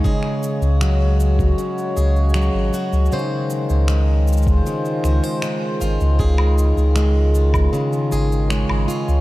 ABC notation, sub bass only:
X:1
M:4/4
L:1/16
Q:1/4=78
K:Db
V:1 name="Sub bass" clef=bass
z3 D,,4- D,, z2 D,,3 A,,, z D,, | z3 D,,4- D,, z2 D,, z3 A,,, D,,- | D,,3 D,,4- D,, z2 A,,,3 A,,, z D,, |]